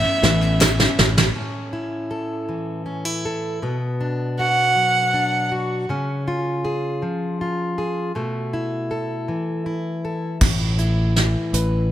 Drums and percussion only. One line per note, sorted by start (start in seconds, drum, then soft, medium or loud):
0.05 clap soft
0.23 snare medium
0.42 clap soft
0.42 tambourine soft
0.61 snare medium
0.61 clap loud
0.61 tambourine loud
0.80 snare medium
0.80 tambourine soft
0.99 snare medium
0.99 tambourine soft
1.18 snare medium
1.18 clap soft
1.18 tambourine soft
10.41 kick medium
10.41 snare soft
10.41 crash medium
10.78 closed hi-hat medium
11.16 snare soft
11.16 closed hi-hat medium
11.54 closed hi-hat medium